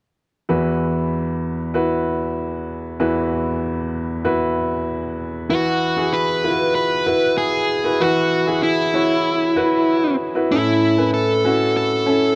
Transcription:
0.49 E2 E3 E4 F#4 B4
1.74 E4 F#4 B4
3.00 E2 E3 E4 F#4 B4
4.25 E4 F#4 B4
5.50 E3 E4 F#4 B4
5.97 E4 F#4 G#4
6.13 B4
6.44 E4 F4 B4
6.50 F#4
6.75 B4
7.06 E4 F#4 B4
7.38 G#4
7.84 E4 F#4 B4
8.00 E3 E4 F#4 B4
8.47 E4 F#4 G#4
8.63 E4
8.94 E4 F#4 C#5
9.56 E4 F#4 B4
10.35 E4 F#4 B4
10.52 A2 C#4 E4 A4
10.98 C#4 E4 B4
11.14 A4
11.44 C#4 E4 F#4
11.77 A4
12.06 C#4 E4 A4

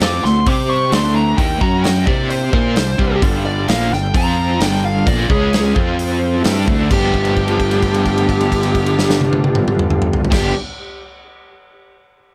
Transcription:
0.00 F2 F3 C4 E4 F4 F#4 A4 D6, snare, open hi-hat
0.24 D2 D3 A3 C4 E4 F#4 A4 C6, snare
0.46 C3 G3 C4 G4 C5 D6, kick, open hi-hat
0.68 G3 C4 G4 C5 C#6
0.90 D2 D3 A3 C4 D4 E4 F#4 A4 C6, snare, open hi-hat
1.13 C4 E4 F#4 B4 A#5
1.37 D#2 D#3 A#3 D4 D#4 E4 G4 A#4 G5, kick, open hi-hat
1.61 F#2 F#3 C#4 F#4 C#5 A#5, kick
1.83 G5, snare, open hi-hat
2.06 C3 A#3 C4 D4 E4 G4 C5 D5, kick
2.30 C5, open hi-hat
2.52 A#2 A#3 D4 E4 F4 G4 A#4, kick
2.75 C2 C3 G3 A#3 D4 E4 G4, snare, open hi-hat
2.99 C2 C3 G3 A#3 C4 D4 E4 G4, kick
3.22 G1 G2 D3 G3 B3 D4 F4 A4, kick, open hi-hat
3.44 B3 D4 F4 A4 D5
3.68 A#1 A#2 F3 A#3 B3 D4 F4 A4 F5, snare, open hi-hat
3.90 G1 G2 D3 B3 D4 F4 A4 G5, snare
4.14 F2 F3 C4 F4 C5 A#5, kick, open hi-hat
4.37 F3 C4 F4 C5
4.59 G1 G2 D3 G3 B3 D4 F4 A4 G5, snare, open hi-hat
4.83 B3 D4 F4 A4 F5
5.04 A#1 A#2 F3 A#3 B3 D4 F4 A4 D5, kick, open hi-hat
5.28 C#2 C#3 G#3 C#4 G#4 C#5, kick
5.53 snare, open hi-hat
5.73 F2 F3 C4 F4 C5, kick
5.99 open hi-hat
6.19 F3 C4 F4 C5
6.41 A3 C4 E4 F#4, open hi-hat
6.45 G2 G3 D4 G4, snare
6.64 D2 D3 A3 C4 E4 F#4, kick
6.69 A3 D4
6.89 G1 G2 D3 F3 A3 B3 D4 F4 G4, kick, crash
6.93 D4 G4
7.14 kick, crash
7.25 crash
7.36 kick, crash
7.48 crash
7.60 kick, crash
7.71 crash
7.82 kick, crash
7.94 crash
8.05 kick, crash
8.18 crash
8.29 kick, crash
8.41 crash
8.52 kick, crash
8.63 crash
8.75 kick, crash
8.86 crash
8.99 snare
9.10 snare
9.21 high tom
9.33 high tom
9.44 high tom
9.55 mid tom
9.68 mid tom
9.79 mid tom
9.90 mid tom
10.02 mid tom
10.13 floor tom
10.25 floor tom
10.30 G1 G2 D3 F3 A3 B3 D4 F4 G4, kick, snare, crash
10.35 G4

